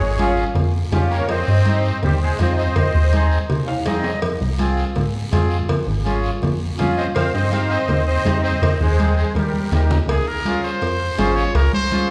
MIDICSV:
0, 0, Header, 1, 6, 480
1, 0, Start_track
1, 0, Tempo, 366300
1, 1689, Time_signature, 4, 2, 24, 8
1, 15865, End_track
2, 0, Start_track
2, 0, Title_t, "Accordion"
2, 0, Program_c, 0, 21
2, 0, Note_on_c, 0, 68, 67
2, 0, Note_on_c, 0, 73, 93
2, 437, Note_off_c, 0, 73, 0
2, 441, Note_off_c, 0, 68, 0
2, 1447, Note_on_c, 0, 73, 90
2, 1463, Note_on_c, 0, 70, 65
2, 1680, Note_off_c, 0, 70, 0
2, 1696, Note_off_c, 0, 73, 0
2, 1696, Note_on_c, 0, 75, 95
2, 1702, Note_on_c, 0, 72, 85
2, 2601, Note_off_c, 0, 75, 0
2, 2604, Note_off_c, 0, 72, 0
2, 2665, Note_on_c, 0, 67, 72
2, 2665, Note_on_c, 0, 72, 93
2, 2882, Note_off_c, 0, 67, 0
2, 2882, Note_off_c, 0, 72, 0
2, 2901, Note_on_c, 0, 72, 90
2, 2904, Note_on_c, 0, 68, 63
2, 3119, Note_off_c, 0, 72, 0
2, 3121, Note_off_c, 0, 68, 0
2, 3138, Note_on_c, 0, 72, 67
2, 3138, Note_on_c, 0, 75, 88
2, 3353, Note_off_c, 0, 75, 0
2, 3354, Note_off_c, 0, 72, 0
2, 3372, Note_on_c, 0, 75, 97
2, 3373, Note_on_c, 0, 72, 75
2, 4280, Note_off_c, 0, 72, 0
2, 4280, Note_off_c, 0, 75, 0
2, 9141, Note_on_c, 0, 75, 100
2, 9150, Note_on_c, 0, 72, 75
2, 9248, Note_off_c, 0, 75, 0
2, 9255, Note_off_c, 0, 72, 0
2, 9363, Note_on_c, 0, 77, 108
2, 9382, Note_on_c, 0, 72, 79
2, 9591, Note_off_c, 0, 77, 0
2, 9601, Note_off_c, 0, 72, 0
2, 9615, Note_on_c, 0, 75, 97
2, 9631, Note_on_c, 0, 72, 71
2, 9838, Note_off_c, 0, 75, 0
2, 9844, Note_off_c, 0, 72, 0
2, 9852, Note_on_c, 0, 77, 96
2, 9864, Note_on_c, 0, 72, 78
2, 10081, Note_off_c, 0, 72, 0
2, 10082, Note_on_c, 0, 75, 97
2, 10100, Note_off_c, 0, 77, 0
2, 10101, Note_on_c, 0, 72, 82
2, 10534, Note_off_c, 0, 75, 0
2, 10544, Note_off_c, 0, 72, 0
2, 10559, Note_on_c, 0, 75, 111
2, 10585, Note_on_c, 0, 72, 84
2, 11012, Note_off_c, 0, 75, 0
2, 11026, Note_off_c, 0, 72, 0
2, 11045, Note_on_c, 0, 75, 98
2, 11067, Note_on_c, 0, 72, 78
2, 11507, Note_off_c, 0, 72, 0
2, 11526, Note_on_c, 0, 72, 86
2, 11544, Note_off_c, 0, 75, 0
2, 11552, Note_on_c, 0, 68, 65
2, 11989, Note_off_c, 0, 68, 0
2, 11989, Note_off_c, 0, 72, 0
2, 12008, Note_on_c, 0, 72, 76
2, 12024, Note_on_c, 0, 68, 63
2, 12242, Note_off_c, 0, 68, 0
2, 12252, Note_on_c, 0, 70, 70
2, 12258, Note_off_c, 0, 72, 0
2, 12276, Note_on_c, 0, 67, 50
2, 12922, Note_off_c, 0, 70, 0
2, 12934, Note_off_c, 0, 67, 0
2, 15865, End_track
3, 0, Start_track
3, 0, Title_t, "Accordion"
3, 0, Program_c, 1, 21
3, 238, Note_on_c, 1, 61, 78
3, 243, Note_on_c, 1, 65, 73
3, 249, Note_on_c, 1, 68, 92
3, 579, Note_off_c, 1, 61, 0
3, 582, Note_off_c, 1, 65, 0
3, 585, Note_off_c, 1, 68, 0
3, 1207, Note_on_c, 1, 61, 78
3, 1211, Note_on_c, 1, 65, 75
3, 1216, Note_on_c, 1, 67, 84
3, 1544, Note_off_c, 1, 61, 0
3, 1546, Note_off_c, 1, 65, 0
3, 1549, Note_off_c, 1, 67, 0
3, 2165, Note_on_c, 1, 60, 76
3, 2173, Note_on_c, 1, 63, 61
3, 2183, Note_on_c, 1, 67, 75
3, 2504, Note_off_c, 1, 60, 0
3, 2508, Note_off_c, 1, 63, 0
3, 2513, Note_off_c, 1, 67, 0
3, 3128, Note_on_c, 1, 60, 69
3, 3136, Note_on_c, 1, 63, 54
3, 3141, Note_on_c, 1, 65, 70
3, 3466, Note_off_c, 1, 60, 0
3, 3470, Note_off_c, 1, 63, 0
3, 3472, Note_off_c, 1, 65, 0
3, 4097, Note_on_c, 1, 60, 77
3, 4102, Note_on_c, 1, 63, 75
3, 4106, Note_on_c, 1, 68, 93
3, 4430, Note_off_c, 1, 60, 0
3, 4433, Note_off_c, 1, 63, 0
3, 4435, Note_off_c, 1, 68, 0
3, 4809, Note_on_c, 1, 77, 61
3, 5034, Note_off_c, 1, 77, 0
3, 5048, Note_on_c, 1, 60, 76
3, 5054, Note_on_c, 1, 63, 74
3, 5054, Note_on_c, 1, 75, 67
3, 5055, Note_on_c, 1, 68, 79
3, 5386, Note_off_c, 1, 60, 0
3, 5389, Note_off_c, 1, 63, 0
3, 5390, Note_off_c, 1, 68, 0
3, 5500, Note_off_c, 1, 75, 0
3, 6006, Note_on_c, 1, 60, 86
3, 6011, Note_on_c, 1, 65, 79
3, 6015, Note_on_c, 1, 68, 91
3, 6346, Note_off_c, 1, 60, 0
3, 6348, Note_off_c, 1, 65, 0
3, 6350, Note_off_c, 1, 68, 0
3, 6956, Note_on_c, 1, 60, 83
3, 6965, Note_on_c, 1, 65, 72
3, 6971, Note_on_c, 1, 68, 82
3, 7301, Note_off_c, 1, 60, 0
3, 7305, Note_off_c, 1, 65, 0
3, 7308, Note_off_c, 1, 68, 0
3, 7919, Note_on_c, 1, 61, 84
3, 7922, Note_on_c, 1, 65, 78
3, 7928, Note_on_c, 1, 68, 85
3, 8262, Note_off_c, 1, 61, 0
3, 8264, Note_off_c, 1, 65, 0
3, 8267, Note_off_c, 1, 68, 0
3, 8885, Note_on_c, 1, 65, 80
3, 8887, Note_on_c, 1, 61, 71
3, 8892, Note_on_c, 1, 68, 91
3, 9225, Note_off_c, 1, 65, 0
3, 9226, Note_off_c, 1, 61, 0
3, 9229, Note_off_c, 1, 68, 0
3, 9851, Note_on_c, 1, 60, 67
3, 9858, Note_on_c, 1, 63, 66
3, 9864, Note_on_c, 1, 67, 76
3, 10189, Note_off_c, 1, 60, 0
3, 10192, Note_off_c, 1, 63, 0
3, 10195, Note_off_c, 1, 67, 0
3, 10822, Note_on_c, 1, 60, 68
3, 10827, Note_on_c, 1, 67, 79
3, 10828, Note_on_c, 1, 63, 60
3, 11154, Note_off_c, 1, 60, 0
3, 11156, Note_off_c, 1, 63, 0
3, 11156, Note_off_c, 1, 67, 0
3, 11782, Note_on_c, 1, 63, 60
3, 11787, Note_on_c, 1, 60, 62
3, 11791, Note_on_c, 1, 68, 75
3, 12113, Note_off_c, 1, 63, 0
3, 12116, Note_off_c, 1, 60, 0
3, 12118, Note_off_c, 1, 68, 0
3, 12741, Note_on_c, 1, 58, 64
3, 12751, Note_on_c, 1, 63, 60
3, 12755, Note_on_c, 1, 67, 74
3, 13072, Note_off_c, 1, 58, 0
3, 13077, Note_off_c, 1, 63, 0
3, 13080, Note_off_c, 1, 67, 0
3, 13697, Note_on_c, 1, 61, 70
3, 13706, Note_on_c, 1, 65, 61
3, 13707, Note_on_c, 1, 68, 78
3, 14030, Note_off_c, 1, 61, 0
3, 14034, Note_off_c, 1, 65, 0
3, 14035, Note_off_c, 1, 68, 0
3, 14647, Note_on_c, 1, 61, 82
3, 14659, Note_on_c, 1, 65, 75
3, 14664, Note_on_c, 1, 68, 96
3, 14984, Note_off_c, 1, 61, 0
3, 14990, Note_off_c, 1, 65, 0
3, 14993, Note_off_c, 1, 68, 0
3, 15611, Note_on_c, 1, 61, 74
3, 15617, Note_on_c, 1, 65, 69
3, 15622, Note_on_c, 1, 68, 76
3, 15865, Note_off_c, 1, 61, 0
3, 15865, Note_off_c, 1, 65, 0
3, 15865, Note_off_c, 1, 68, 0
3, 15865, End_track
4, 0, Start_track
4, 0, Title_t, "Trumpet"
4, 0, Program_c, 2, 56
4, 0, Note_on_c, 2, 56, 68
4, 431, Note_off_c, 2, 56, 0
4, 1445, Note_on_c, 2, 58, 78
4, 1670, Note_off_c, 2, 58, 0
4, 1681, Note_on_c, 2, 60, 97
4, 2593, Note_off_c, 2, 60, 0
4, 2660, Note_on_c, 2, 55, 75
4, 2879, Note_off_c, 2, 55, 0
4, 2913, Note_on_c, 2, 56, 79
4, 3126, Note_off_c, 2, 56, 0
4, 3163, Note_on_c, 2, 60, 75
4, 3371, Note_off_c, 2, 60, 0
4, 3398, Note_on_c, 2, 60, 78
4, 4292, Note_off_c, 2, 60, 0
4, 9140, Note_on_c, 2, 60, 73
4, 9247, Note_off_c, 2, 60, 0
4, 9372, Note_on_c, 2, 60, 89
4, 9592, Note_off_c, 2, 60, 0
4, 9600, Note_on_c, 2, 60, 78
4, 9829, Note_off_c, 2, 60, 0
4, 9848, Note_on_c, 2, 60, 87
4, 10074, Note_off_c, 2, 60, 0
4, 10082, Note_on_c, 2, 60, 81
4, 10534, Note_off_c, 2, 60, 0
4, 10569, Note_on_c, 2, 60, 84
4, 11018, Note_off_c, 2, 60, 0
4, 11049, Note_on_c, 2, 60, 79
4, 11497, Note_off_c, 2, 60, 0
4, 11540, Note_on_c, 2, 56, 80
4, 11983, Note_off_c, 2, 56, 0
4, 12021, Note_on_c, 2, 56, 68
4, 12241, Note_off_c, 2, 56, 0
4, 12246, Note_on_c, 2, 55, 63
4, 12918, Note_off_c, 2, 55, 0
4, 13221, Note_on_c, 2, 68, 89
4, 13464, Note_on_c, 2, 70, 98
4, 13484, Note_off_c, 2, 68, 0
4, 13926, Note_off_c, 2, 70, 0
4, 13934, Note_on_c, 2, 72, 99
4, 14883, Note_on_c, 2, 73, 98
4, 14903, Note_off_c, 2, 72, 0
4, 15145, Note_on_c, 2, 70, 107
4, 15165, Note_off_c, 2, 73, 0
4, 15377, Note_off_c, 2, 70, 0
4, 15385, Note_on_c, 2, 72, 107
4, 15823, Note_off_c, 2, 72, 0
4, 15865, End_track
5, 0, Start_track
5, 0, Title_t, "Analog synth bass"
5, 0, Program_c, 3, 38
5, 5, Note_on_c, 3, 32, 97
5, 583, Note_off_c, 3, 32, 0
5, 716, Note_on_c, 3, 41, 102
5, 1105, Note_off_c, 3, 41, 0
5, 1204, Note_on_c, 3, 41, 86
5, 1590, Note_off_c, 3, 41, 0
5, 1689, Note_on_c, 3, 41, 96
5, 1881, Note_off_c, 3, 41, 0
5, 1938, Note_on_c, 3, 43, 96
5, 2511, Note_off_c, 3, 43, 0
5, 2658, Note_on_c, 3, 39, 99
5, 3039, Note_off_c, 3, 39, 0
5, 3137, Note_on_c, 3, 41, 100
5, 3519, Note_off_c, 3, 41, 0
5, 3616, Note_on_c, 3, 41, 102
5, 3806, Note_off_c, 3, 41, 0
5, 3860, Note_on_c, 3, 39, 97
5, 4433, Note_off_c, 3, 39, 0
5, 4577, Note_on_c, 3, 48, 98
5, 4959, Note_off_c, 3, 48, 0
5, 5062, Note_on_c, 3, 41, 97
5, 5442, Note_off_c, 3, 41, 0
5, 5534, Note_on_c, 3, 41, 90
5, 5726, Note_off_c, 3, 41, 0
5, 5778, Note_on_c, 3, 36, 103
5, 6352, Note_off_c, 3, 36, 0
5, 6502, Note_on_c, 3, 44, 92
5, 6882, Note_off_c, 3, 44, 0
5, 6976, Note_on_c, 3, 41, 91
5, 7359, Note_off_c, 3, 41, 0
5, 7456, Note_on_c, 3, 41, 106
5, 7647, Note_off_c, 3, 41, 0
5, 7691, Note_on_c, 3, 32, 104
5, 8268, Note_off_c, 3, 32, 0
5, 8416, Note_on_c, 3, 41, 104
5, 8799, Note_off_c, 3, 41, 0
5, 8907, Note_on_c, 3, 41, 92
5, 9286, Note_off_c, 3, 41, 0
5, 9385, Note_on_c, 3, 41, 99
5, 9572, Note_off_c, 3, 41, 0
5, 9617, Note_on_c, 3, 43, 101
5, 10192, Note_off_c, 3, 43, 0
5, 10330, Note_on_c, 3, 39, 105
5, 10716, Note_off_c, 3, 39, 0
5, 10808, Note_on_c, 3, 41, 88
5, 11194, Note_off_c, 3, 41, 0
5, 11294, Note_on_c, 3, 41, 93
5, 11486, Note_off_c, 3, 41, 0
5, 11540, Note_on_c, 3, 39, 98
5, 12113, Note_off_c, 3, 39, 0
5, 12248, Note_on_c, 3, 39, 103
5, 12634, Note_off_c, 3, 39, 0
5, 12731, Note_on_c, 3, 39, 90
5, 13115, Note_off_c, 3, 39, 0
5, 13205, Note_on_c, 3, 37, 110
5, 13400, Note_off_c, 3, 37, 0
5, 14174, Note_on_c, 3, 41, 99
5, 14556, Note_off_c, 3, 41, 0
5, 14658, Note_on_c, 3, 32, 103
5, 15038, Note_off_c, 3, 32, 0
5, 15128, Note_on_c, 3, 37, 109
5, 15320, Note_off_c, 3, 37, 0
5, 15865, End_track
6, 0, Start_track
6, 0, Title_t, "Drums"
6, 242, Note_on_c, 9, 73, 69
6, 251, Note_on_c, 9, 63, 77
6, 252, Note_on_c, 9, 56, 70
6, 373, Note_off_c, 9, 73, 0
6, 382, Note_off_c, 9, 63, 0
6, 383, Note_off_c, 9, 56, 0
6, 482, Note_on_c, 9, 73, 60
6, 614, Note_off_c, 9, 73, 0
6, 724, Note_on_c, 9, 74, 65
6, 726, Note_on_c, 9, 63, 32
6, 726, Note_on_c, 9, 64, 84
6, 728, Note_on_c, 9, 56, 74
6, 855, Note_off_c, 9, 74, 0
6, 857, Note_off_c, 9, 63, 0
6, 857, Note_off_c, 9, 64, 0
6, 859, Note_off_c, 9, 56, 0
6, 1204, Note_on_c, 9, 73, 62
6, 1212, Note_on_c, 9, 56, 72
6, 1212, Note_on_c, 9, 66, 77
6, 1213, Note_on_c, 9, 63, 73
6, 1213, Note_on_c, 9, 64, 61
6, 1335, Note_off_c, 9, 73, 0
6, 1343, Note_off_c, 9, 56, 0
6, 1343, Note_off_c, 9, 66, 0
6, 1344, Note_off_c, 9, 63, 0
6, 1344, Note_off_c, 9, 64, 0
6, 1454, Note_on_c, 9, 73, 72
6, 1585, Note_off_c, 9, 73, 0
6, 1686, Note_on_c, 9, 56, 105
6, 1692, Note_on_c, 9, 74, 70
6, 1696, Note_on_c, 9, 63, 33
6, 1817, Note_off_c, 9, 56, 0
6, 1823, Note_off_c, 9, 74, 0
6, 1827, Note_off_c, 9, 63, 0
6, 2165, Note_on_c, 9, 56, 67
6, 2174, Note_on_c, 9, 73, 62
6, 2178, Note_on_c, 9, 63, 72
6, 2296, Note_off_c, 9, 56, 0
6, 2306, Note_off_c, 9, 73, 0
6, 2309, Note_off_c, 9, 63, 0
6, 2418, Note_on_c, 9, 73, 70
6, 2549, Note_off_c, 9, 73, 0
6, 2656, Note_on_c, 9, 56, 69
6, 2662, Note_on_c, 9, 74, 76
6, 2672, Note_on_c, 9, 63, 36
6, 2672, Note_on_c, 9, 64, 81
6, 2787, Note_off_c, 9, 56, 0
6, 2793, Note_off_c, 9, 74, 0
6, 2803, Note_off_c, 9, 63, 0
6, 2803, Note_off_c, 9, 64, 0
6, 3131, Note_on_c, 9, 56, 77
6, 3131, Note_on_c, 9, 66, 72
6, 3144, Note_on_c, 9, 73, 72
6, 3146, Note_on_c, 9, 63, 70
6, 3262, Note_off_c, 9, 56, 0
6, 3262, Note_off_c, 9, 66, 0
6, 3275, Note_off_c, 9, 73, 0
6, 3277, Note_off_c, 9, 63, 0
6, 3382, Note_on_c, 9, 73, 65
6, 3513, Note_off_c, 9, 73, 0
6, 3615, Note_on_c, 9, 56, 111
6, 3622, Note_on_c, 9, 74, 71
6, 3627, Note_on_c, 9, 63, 33
6, 3627, Note_on_c, 9, 64, 70
6, 3746, Note_off_c, 9, 56, 0
6, 3753, Note_off_c, 9, 74, 0
6, 3758, Note_off_c, 9, 63, 0
6, 3758, Note_off_c, 9, 64, 0
6, 4098, Note_on_c, 9, 56, 65
6, 4099, Note_on_c, 9, 73, 66
6, 4110, Note_on_c, 9, 63, 75
6, 4229, Note_off_c, 9, 56, 0
6, 4230, Note_off_c, 9, 73, 0
6, 4241, Note_off_c, 9, 63, 0
6, 4338, Note_on_c, 9, 73, 66
6, 4469, Note_off_c, 9, 73, 0
6, 4580, Note_on_c, 9, 74, 71
6, 4583, Note_on_c, 9, 56, 80
6, 4583, Note_on_c, 9, 63, 35
6, 4583, Note_on_c, 9, 64, 77
6, 4711, Note_off_c, 9, 74, 0
6, 4714, Note_off_c, 9, 56, 0
6, 4714, Note_off_c, 9, 63, 0
6, 4714, Note_off_c, 9, 64, 0
6, 4821, Note_on_c, 9, 65, 81
6, 4952, Note_off_c, 9, 65, 0
6, 5053, Note_on_c, 9, 56, 72
6, 5053, Note_on_c, 9, 66, 89
6, 5057, Note_on_c, 9, 73, 71
6, 5068, Note_on_c, 9, 63, 74
6, 5184, Note_off_c, 9, 56, 0
6, 5184, Note_off_c, 9, 66, 0
6, 5188, Note_off_c, 9, 73, 0
6, 5199, Note_off_c, 9, 63, 0
6, 5295, Note_on_c, 9, 66, 88
6, 5302, Note_on_c, 9, 73, 69
6, 5426, Note_off_c, 9, 66, 0
6, 5433, Note_off_c, 9, 73, 0
6, 5533, Note_on_c, 9, 56, 110
6, 5533, Note_on_c, 9, 74, 71
6, 5546, Note_on_c, 9, 63, 32
6, 5664, Note_off_c, 9, 56, 0
6, 5664, Note_off_c, 9, 74, 0
6, 5677, Note_off_c, 9, 63, 0
6, 6009, Note_on_c, 9, 73, 66
6, 6017, Note_on_c, 9, 56, 68
6, 6024, Note_on_c, 9, 63, 76
6, 6140, Note_off_c, 9, 73, 0
6, 6148, Note_off_c, 9, 56, 0
6, 6155, Note_off_c, 9, 63, 0
6, 6252, Note_on_c, 9, 73, 61
6, 6383, Note_off_c, 9, 73, 0
6, 6492, Note_on_c, 9, 74, 72
6, 6498, Note_on_c, 9, 56, 77
6, 6504, Note_on_c, 9, 63, 34
6, 6504, Note_on_c, 9, 64, 81
6, 6623, Note_off_c, 9, 74, 0
6, 6629, Note_off_c, 9, 56, 0
6, 6635, Note_off_c, 9, 63, 0
6, 6635, Note_off_c, 9, 64, 0
6, 6968, Note_on_c, 9, 73, 70
6, 6980, Note_on_c, 9, 63, 76
6, 6980, Note_on_c, 9, 64, 63
6, 6983, Note_on_c, 9, 56, 76
6, 6983, Note_on_c, 9, 66, 72
6, 7099, Note_off_c, 9, 73, 0
6, 7111, Note_off_c, 9, 63, 0
6, 7111, Note_off_c, 9, 64, 0
6, 7114, Note_off_c, 9, 56, 0
6, 7114, Note_off_c, 9, 66, 0
6, 7209, Note_on_c, 9, 73, 75
6, 7340, Note_off_c, 9, 73, 0
6, 7452, Note_on_c, 9, 74, 63
6, 7460, Note_on_c, 9, 56, 111
6, 7462, Note_on_c, 9, 63, 34
6, 7462, Note_on_c, 9, 64, 71
6, 7583, Note_off_c, 9, 74, 0
6, 7591, Note_off_c, 9, 56, 0
6, 7593, Note_off_c, 9, 63, 0
6, 7593, Note_off_c, 9, 64, 0
6, 7933, Note_on_c, 9, 73, 66
6, 7941, Note_on_c, 9, 63, 70
6, 7948, Note_on_c, 9, 56, 59
6, 8064, Note_off_c, 9, 73, 0
6, 8072, Note_off_c, 9, 63, 0
6, 8079, Note_off_c, 9, 56, 0
6, 8172, Note_on_c, 9, 73, 60
6, 8303, Note_off_c, 9, 73, 0
6, 8410, Note_on_c, 9, 74, 69
6, 8424, Note_on_c, 9, 56, 73
6, 8433, Note_on_c, 9, 63, 36
6, 8433, Note_on_c, 9, 64, 87
6, 8541, Note_off_c, 9, 74, 0
6, 8555, Note_off_c, 9, 56, 0
6, 8564, Note_off_c, 9, 63, 0
6, 8564, Note_off_c, 9, 64, 0
6, 8890, Note_on_c, 9, 73, 75
6, 8898, Note_on_c, 9, 56, 70
6, 8914, Note_on_c, 9, 63, 81
6, 8914, Note_on_c, 9, 64, 65
6, 9021, Note_off_c, 9, 73, 0
6, 9029, Note_off_c, 9, 56, 0
6, 9045, Note_off_c, 9, 63, 0
6, 9045, Note_off_c, 9, 64, 0
6, 9138, Note_on_c, 9, 73, 63
6, 9270, Note_off_c, 9, 73, 0
6, 9369, Note_on_c, 9, 74, 77
6, 9380, Note_on_c, 9, 56, 116
6, 9388, Note_on_c, 9, 63, 31
6, 9388, Note_on_c, 9, 64, 66
6, 9500, Note_off_c, 9, 74, 0
6, 9511, Note_off_c, 9, 56, 0
6, 9519, Note_off_c, 9, 63, 0
6, 9519, Note_off_c, 9, 64, 0
6, 9854, Note_on_c, 9, 73, 66
6, 9857, Note_on_c, 9, 63, 77
6, 9865, Note_on_c, 9, 56, 66
6, 9985, Note_off_c, 9, 73, 0
6, 9988, Note_off_c, 9, 63, 0
6, 9996, Note_off_c, 9, 56, 0
6, 10092, Note_on_c, 9, 73, 67
6, 10223, Note_off_c, 9, 73, 0
6, 10329, Note_on_c, 9, 74, 74
6, 10340, Note_on_c, 9, 56, 78
6, 10345, Note_on_c, 9, 63, 35
6, 10345, Note_on_c, 9, 64, 81
6, 10460, Note_off_c, 9, 74, 0
6, 10471, Note_off_c, 9, 56, 0
6, 10477, Note_off_c, 9, 63, 0
6, 10477, Note_off_c, 9, 64, 0
6, 10815, Note_on_c, 9, 73, 70
6, 10822, Note_on_c, 9, 63, 77
6, 10822, Note_on_c, 9, 64, 61
6, 10830, Note_on_c, 9, 56, 76
6, 10830, Note_on_c, 9, 66, 78
6, 10946, Note_off_c, 9, 73, 0
6, 10953, Note_off_c, 9, 63, 0
6, 10953, Note_off_c, 9, 64, 0
6, 10962, Note_off_c, 9, 56, 0
6, 10962, Note_off_c, 9, 66, 0
6, 11055, Note_on_c, 9, 73, 67
6, 11186, Note_off_c, 9, 73, 0
6, 11291, Note_on_c, 9, 74, 68
6, 11308, Note_on_c, 9, 56, 117
6, 11310, Note_on_c, 9, 63, 34
6, 11310, Note_on_c, 9, 64, 72
6, 11422, Note_off_c, 9, 74, 0
6, 11439, Note_off_c, 9, 56, 0
6, 11441, Note_off_c, 9, 63, 0
6, 11441, Note_off_c, 9, 64, 0
6, 11782, Note_on_c, 9, 73, 63
6, 11787, Note_on_c, 9, 63, 81
6, 11791, Note_on_c, 9, 56, 68
6, 11913, Note_off_c, 9, 73, 0
6, 11918, Note_off_c, 9, 63, 0
6, 11922, Note_off_c, 9, 56, 0
6, 12019, Note_on_c, 9, 73, 64
6, 12150, Note_off_c, 9, 73, 0
6, 12254, Note_on_c, 9, 74, 71
6, 12266, Note_on_c, 9, 63, 87
6, 12268, Note_on_c, 9, 56, 81
6, 12386, Note_off_c, 9, 74, 0
6, 12397, Note_off_c, 9, 63, 0
6, 12399, Note_off_c, 9, 56, 0
6, 12498, Note_on_c, 9, 63, 70
6, 12630, Note_off_c, 9, 63, 0
6, 12730, Note_on_c, 9, 73, 69
6, 12741, Note_on_c, 9, 64, 72
6, 12744, Note_on_c, 9, 56, 67
6, 12744, Note_on_c, 9, 66, 80
6, 12861, Note_off_c, 9, 73, 0
6, 12872, Note_off_c, 9, 64, 0
6, 12875, Note_off_c, 9, 56, 0
6, 12875, Note_off_c, 9, 66, 0
6, 12974, Note_on_c, 9, 73, 61
6, 12982, Note_on_c, 9, 64, 99
6, 13105, Note_off_c, 9, 73, 0
6, 13113, Note_off_c, 9, 64, 0
6, 13222, Note_on_c, 9, 74, 70
6, 13223, Note_on_c, 9, 56, 117
6, 13353, Note_off_c, 9, 74, 0
6, 13354, Note_off_c, 9, 56, 0
6, 13695, Note_on_c, 9, 73, 72
6, 13697, Note_on_c, 9, 63, 73
6, 13706, Note_on_c, 9, 56, 72
6, 13826, Note_off_c, 9, 73, 0
6, 13829, Note_off_c, 9, 63, 0
6, 13837, Note_off_c, 9, 56, 0
6, 13937, Note_on_c, 9, 73, 73
6, 14068, Note_off_c, 9, 73, 0
6, 14172, Note_on_c, 9, 74, 72
6, 14181, Note_on_c, 9, 56, 87
6, 14303, Note_off_c, 9, 74, 0
6, 14312, Note_off_c, 9, 56, 0
6, 14651, Note_on_c, 9, 73, 78
6, 14657, Note_on_c, 9, 56, 70
6, 14657, Note_on_c, 9, 66, 80
6, 14659, Note_on_c, 9, 63, 84
6, 14783, Note_off_c, 9, 73, 0
6, 14788, Note_off_c, 9, 56, 0
6, 14788, Note_off_c, 9, 66, 0
6, 14790, Note_off_c, 9, 63, 0
6, 14896, Note_on_c, 9, 73, 75
6, 15027, Note_off_c, 9, 73, 0
6, 15134, Note_on_c, 9, 56, 115
6, 15139, Note_on_c, 9, 74, 79
6, 15265, Note_off_c, 9, 56, 0
6, 15270, Note_off_c, 9, 74, 0
6, 15374, Note_on_c, 9, 63, 77
6, 15505, Note_off_c, 9, 63, 0
6, 15613, Note_on_c, 9, 73, 72
6, 15615, Note_on_c, 9, 56, 65
6, 15620, Note_on_c, 9, 63, 81
6, 15744, Note_off_c, 9, 73, 0
6, 15746, Note_off_c, 9, 56, 0
6, 15751, Note_off_c, 9, 63, 0
6, 15865, End_track
0, 0, End_of_file